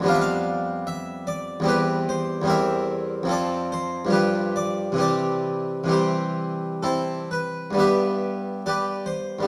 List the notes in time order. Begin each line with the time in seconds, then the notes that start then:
0.00 F2 G3 B3
0.06 D4 F5
0.14 E5
0.21 F5
0.87 E5
1.27 D5
1.60 E2 G3 C4
1.66 G4 B4
2.09 C5
2.42 E2 G3
2.46 C4 A#4 E5
3.23 F2 F3 C4
3.29 A4 D5
3.72 C5
4.05 G2 F3 G3
4.11 G4 B4
4.56 D5
4.92 C3 E3
4.96 G3 G4
5.01 D5
5.84 C3 E3 G3
5.89 G4 C5
6.83 C4 E4 A4
7.31 B4
7.71 G2 G3
7.75 B3
7.79 G4 B4 E5
8.66 G4 B4 D5
9.06 C5
9.39 G2 G3
9.43 B3